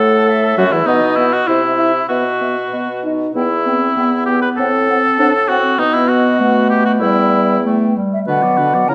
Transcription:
Already playing: A2 A3 A4 F#5
0.30 E5
0.57 F#2 F#3 F#4
0.72 E2 E3 E4
0.86 B2 B3 D#4 D#5 F#5
1.16 B3 E4 F#5
1.33 F#4
1.47 C3 E4 C5 E5
1.78 E4 E5
2.09 B2 B3 F#4 B4 E5
2.41 B3 E5
2.72 B2 B3 D#5
3.04 D#4 D#5
3.35 E2 B3 E4 G5
3.66 B3 C4 G5
3.97 E2 B3 G5
4.26 B3 G4 G5
4.42 B4
4.57 A2 C4 A4 F#5
4.88 C4 F#5
5.18 A2 C4 D4 F#5
5.48 C4 F#4 F#5
5.79 B2 B3 D#4 D#5
5.94 E4
6.09 F#4
6.39 A3 F#5
6.70 G4
6.85 F#4
7.00 E2 G3 B3 E4 G5
7.64 A3
7.96 G3
8.13 E5
8.27 B2 D3 D4 B4 F#5
8.42 F#3 B3 D5
8.57 D3 D4 B4
8.74 F#3 B3 D5
8.88 C#3 E4 A#4 A#5

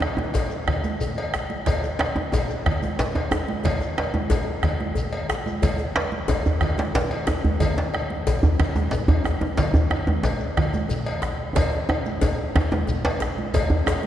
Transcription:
0.00 bombo rim, cowbell, djembe tone, high conga
0.17 bombo rim, djembe tone, high conga
0.34 cowbell, djembe slap, djembe tone, djembe bass, shekere
0.50 djembe slap, shekere
0.67 bombo rim, bombo low, cowbell, high conga, low conga
0.84 djembe tone, high conga, shekere
1.00 high conga, djembe bass, shekere
1.17 cowbell, high conga
1.34 bombo rim, djembe slap, djembe tone
1.50 djembe slap, high conga
1.66 bombo rim, bombo low, cowbell, low conga, djembe bass, shekere
1.83 bombo rim, high conga, djembe tone, shekere
1.99 bombo rim, cowbell, djembe slap, high conga
2.16 bombo rim, djembe tone, high conga
2.32 cowbell, djembe slap, djembe tone, djembe bass, shekere
2.50 djembe slap, shekere
2.66 bombo rim, bombo low, cowbell, high conga, low conga
2.82 high conga, djembe tone, shekere
2.99 djembe slap, high conga, djembe bass, shekere
3.15 cowbell, djembe tone, high conga
3.31 bombo rim, djembe slap, djembe tone
3.48 djembe slap, high conga
3.64 bombo low, cowbell, djembe slap, high conga, djembe bass, low conga, shekere
3.80 bombo rim, djembe slap, djembe tone, shekere
3.98 bombo rim, cowbell, djembe slap
4.14 djembe tone, high conga
4.30 bombo rim, cowbell, djembe slap, djembe tone, high conga, djembe bass, shekere
4.63 bombo rim, bombo low, cowbell, high conga, low conga
4.80 high conga
4.95 djembe bass, shekere
5.13 cowbell
5.29 bombo rim, djembe slap, djembe tone, high conga, shekere
5.46 high conga, shekere
5.62 bombo rim, bombo low, cowbell, djembe bass, low conga, shekere
5.78 bombo rim, djembe tone, high conga, shekere
5.96 bombo rim, cowbell, djembe slap, high conga
6.12 bombo rim, high conga
6.28 cowbell, djembe slap, djembe tone, djembe bass, shekere
6.45 djembe slap, djembe bass, shekere
6.61 bombo rim, bombo low, cowbell, high conga, low conga
6.78 djembe slap, high conga, djembe tone, shekere
6.94 djembe slap, high conga, djembe bass, shekere
7.11 cowbell, high conga
7.27 bombo rim, djembe slap, djembe tone
7.44 djembe slap, high conga, djembe bass
7.60 bombo rim, bombo low, cowbell, djembe bass, low conga, shekere
7.77 bombo rim, djembe slap, djembe tone, high conga, shekere
7.94 bombo rim, cowbell, high conga
8.10 bombo rim, high conga
8.27 cowbell, djembe slap, djembe tone, djembe bass, shekere
8.43 djembe slap, djembe bass, shekere
8.59 bombo rim, bombo low, cowbell, djembe tone, high conga, low conga
8.75 djembe tone, high conga, shekere
8.91 djembe slap, high conga, djembe bass, shekere
9.08 cowbell, high conga, djembe bass
9.24 bombo rim, djembe slap, djembe tone
9.26 djembe tone
9.41 djembe slap, djembe tone, high conga
9.57 bombo rim, bombo low, cowbell, djembe slap, djembe bass, low conga, shekere
9.74 bombo rim, djembe tone, high conga, djembe bass, shekere
9.91 bombo rim, cowbell, djembe tone, high conga
10.07 bombo rim, djembe tone, high conga
10.23 cowbell, djembe slap, djembe tone, djembe bass, shekere
10.40 djembe slap, shekere
10.57 bombo rim, bombo low, cowbell, high conga, low conga
10.73 djembe tone, high conga, shekere
10.89 djembe bass, shekere
11.06 cowbell, high conga
11.22 bombo rim, djembe slap, djembe tone
11.39 djembe slap
11.55 bombo low, cowbell, djembe tone, djembe bass, low conga, shekere
11.72 djembe tone, high conga
11.89 bombo rim, cowbell, djembe slap, djembe tone, high conga
12.06 bombo rim, high conga, shekere
12.21 cowbell, djembe slap, djembe tone, high conga, djembe bass, shekere
12.39 bombo rim
12.55 bombo rim, bombo low, cowbell, djembe slap, djembe tone, low conga
12.71 bombo rim, djembe tone, high conga
12.87 bombo rim, djembe slap, djembe bass, shekere
13.05 cowbell, djembe slap
13.20 bombo rim, djembe slap, djembe tone, shekere
13.38 high conga
13.54 bombo rim, bombo low, cowbell, low conga, djembe bass, shekere
13.70 high conga, djembe bass
13.86 bombo rim, cowbell, djembe slap, djembe tone
14.03 high conga

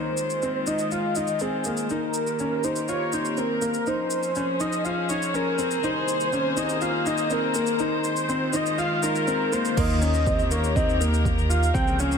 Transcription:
Already playing: D#3 A#3 D#4 G#4 C5
0.03 G#3 F4
0.17 shaker
0.30 shaker
0.42 C4, shaker
0.67 D#4 D#5, shaker
0.79 shaker
0.91 F4 F5, shaker
1.15 D#4 D#5, shaker
1.27 shaker
1.39 C4 G#4, shaker
1.64 A#3, shaker
1.77 shaker
1.90 D#4 A#4, shaker
1.99 A#3
2.08 G4
2.14 shaker
2.27 shaker
2.39 C#4, shaker
2.43 A#4
2.64 D#4 C5, shaker
2.76 shaker
2.88 F4 C#5, shaker
3.13 D#4 C5, shaker
3.25 shaker
3.37 C4 A#4, shaker
3.62 A#3, shaker
3.74 shaker
3.86 F3 D#4 C5, shaker
3.94 C#4
4.10 shaker
4.23 G#4, shaker
4.35 C#4, shaker
4.41 C5
4.60 D#4 D#5, shaker
4.72 shaker
4.84 F4 F5, shaker
5.09 D#4 C#5, shaker
5.22 shaker
5.34 C#4 A#4, shaker
5.58 C4, shaker
5.71 shaker
5.83 C2 D#3 D#4 C5, shaker
6.04 A#3
6.08 shaker
6.20 shaker
6.33 C#4, shaker
6.57 D#4 D#5, shaker
6.69 shaker
6.81 F4 F5, shaker
7.06 D#4 D#5, shaker
7.18 shaker
7.30 C4 A#4, shaker
7.54 A#3, shaker
7.66 shaker
7.79 D#4 C5, shaker
8.02 G#3, shaker
8.16 F4, shaker
8.29 C4, shaker
8.53 D#4 D#5, shaker
8.66 shaker
8.78 F4 F5, shaker
9.03 D#4 A#4, shaker
9.15 shaker
9.27 C4, shaker
9.52 A#3 C5, shaker
9.65 shaker
9.77 D#2 A#3 D#5, kick, crash, shaker
9.81 A#3
9.90 A#4, shaker
10.02 C#4 G4, shaker
10.14 shaker
10.27 C4, kick, shaker
10.39 shaker
10.51 A#3 C#5, shaker
10.64 shaker
10.76 C4 D#5, kick, shaker
10.89 shaker
11.00 A#3, shaker
11.14 shaker
11.25 kick, shaker
11.39 shaker
11.49 F4 F5, shaker
11.63 shaker
11.74 C#2 F3 C4 G5, kick, shaker
11.83 C#4 G#4
11.87 shaker
11.99 C#4 C5 F5, shaker
12.12 shaker

